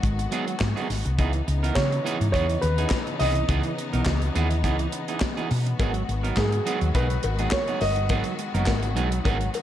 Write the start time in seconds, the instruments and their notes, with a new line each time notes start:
Already playing: string section D#3 G#3 B3 F#4, grand piano D#5
0.03 fingered electric bass G#1, muted clean electric guitar stroke, kick, closed hi-hat
0.19 muted clean electric guitar stroke, closed hi-hat
0.31 clean electric guitar F#3 B3 D#4 G#4, closed hi-hat
0.47 muted clean electric guitar stroke, closed hi-hat
0.60 fingered electric bass G#2, muted clean electric guitar stroke, kick, snare, clap
0.76 clean electric guitar F#3 B3 D#4 G#4, closed hi-hat
0.90 fingered electric bass G#1, snare, open hi-hat
1.05 fingered electric bass C2, muted clean electric guitar stroke, closed hi-hat
1.18 fingered electric bass C#2, string section C#3 E3 D#4, clean electric guitar E3 B3 D#4 G#4, kick, closed hi-hat
1.33 muted clean electric guitar stroke, closed hi-hat
1.47 fingered electric bass C#2, muted clean electric guitar stroke, closed hi-hat
1.63 clean electric guitar E3 B3 D#4 A#4, closed hi-hat
1.75 fingered electric bass C#3, grand piano C#5, kick, snare, clap
1.91 muted clean electric guitar stroke, closed hi-hat
2.05 clean electric guitar E3 B3 D#4 G#4, closed hi-hat
2.20 fingered electric bass G#2, muted clean electric guitar stroke, closed hi-hat
2.32 fingered electric bass E2, clean electric guitar E3 B3 D#4 G#4, grand piano C#5, kick, closed hi-hat
2.49 muted clean electric guitar stroke, closed hi-hat
2.61 fingered electric bass D#2, grand piano B4, muted clean electric guitar stroke, closed hi-hat
2.78 clean electric guitar E3 B3 D#4 G#4, closed hi-hat
2.90 kick, snare, clap
3.07 muted clean electric guitar stroke, closed hi-hat
3.19 fingered electric bass C2, clean electric guitar E3 B3 D#4 G#4, grand piano D#5, snare, open hi-hat
3.35 muted clean electric guitar stroke, closed hi-hat
3.49 fingered electric bass C#2, clean electric guitar E3 B3 D#4 G#4, kick, closed hi-hat
3.63 muted clean electric guitar stroke, closed hi-hat
3.78 muted clean electric guitar stroke, closed hi-hat
3.93 fingered electric bass B1, clean electric guitar E3 B3 D#4 A#4, closed hi-hat
4.06 fingered electric bass C#2, kick, snare, clap
4.21 muted clean electric guitar stroke, closed hi-hat
4.35 fingered electric bass D#2, clean electric guitar E3 B3 D#4 G#4, closed hi-hat
4.50 muted clean electric guitar stroke, closed hi-hat
4.64 fingered electric bass C#2, clean electric guitar E3 B3 D#4 G#4, kick, closed hi-hat
4.79 muted clean electric guitar stroke, closed hi-hat
4.92 muted clean electric guitar stroke, closed hi-hat
5.08 clean electric guitar E3 B3 D#4 G#4, closed hi-hat
5.20 muted clean electric guitar stroke, kick, snare, clap
5.37 clean electric guitar E3 B3 D#4 G#4, closed hi-hat
5.51 fingered electric bass B2, muted clean electric guitar stroke, open hi-hat
5.66 muted clean electric guitar stroke, closed hi-hat
5.79 fingered electric bass G#1, string section D#3 G#3 F#4, clean electric guitar F#3 B3 D#4 G#4, kick, closed hi-hat, cowbell
5.94 muted clean electric guitar stroke, closed hi-hat
6.08 fingered electric bass G#1, muted clean electric guitar stroke, closed hi-hat
6.23 clean electric guitar F#3 B3 D#4 A#4, closed hi-hat
6.37 fingered electric bass G#2, grand piano G#4, kick, snare, clap, cowbell
6.52 muted clean electric guitar stroke, closed hi-hat
6.66 clean electric guitar F#3 B3 D#4 G#4, closed hi-hat
6.81 fingered electric bass D#2, muted clean electric guitar stroke, closed hi-hat
6.94 fingered electric bass B1, clean electric guitar F#3 B3 D#4 G#4, grand piano B4, kick, closed hi-hat, cowbell
7.10 muted clean electric guitar stroke, closed hi-hat
7.23 fingered electric bass G#1, muted clean electric guitar stroke, closed hi-hat, cowbell
7.39 clean electric guitar F#3 B3 D#4 G#4, closed hi-hat
7.51 grand piano C#5, muted clean electric guitar stroke, kick, snare, clap, cowbell
7.68 clean electric guitar F#3 B3 D#4 G#4, closed hi-hat
7.81 fingered electric bass G1, grand piano D#5, snare, open hi-hat, cowbell
7.96 muted clean electric guitar stroke, closed hi-hat
8.09 fingered electric bass G#1, clean electric guitar F#3 B3 D#4 G#4, kick, closed hi-hat, cowbell
8.24 muted clean electric guitar stroke, closed hi-hat
8.39 muted clean electric guitar stroke, closed hi-hat
8.54 fingered electric bass F#1, clean electric guitar F#3 B3 D#4 A#4, closed hi-hat
8.66 fingered electric bass G#1, kick, snare, clap, cowbell
8.83 muted clean electric guitar stroke, closed hi-hat
8.96 fingered electric bass B1, clean electric guitar F#3 B3 D#4 G#4, closed hi-hat
9.11 muted clean electric guitar stroke, closed hi-hat
9.25 fingered electric bass G#1, clean electric guitar F#3 B3 D#4 G#4, kick, closed hi-hat, cowbell
9.40 muted clean electric guitar stroke, closed hi-hat
9.54 muted clean electric guitar stroke, closed hi-hat, cowbell